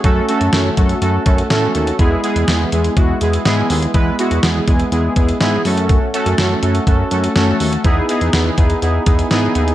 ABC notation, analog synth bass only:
X:1
M:4/4
L:1/16
Q:1/4=123
K:E
V:1 name="Analog synth bass" clef=bass
F,,2 z F,, F,,2 F,,2 F,,2 F,,2 A,,2 D,,2 | E,,2 z E,, E,,2 E,,2 E,,2 E,,2 G,,2 D,,2 | E,,2 z E,, E,,2 E,,2 E,,2 E,,2 G,,2 F,,2- | F,,2 z F,, F,,2 F,,2 F,,2 F,,2 F,,2 D,,2 |
E,,2 z E,, E,,2 E,,2 E,,2 E,,2 G,,2 D,,2 |]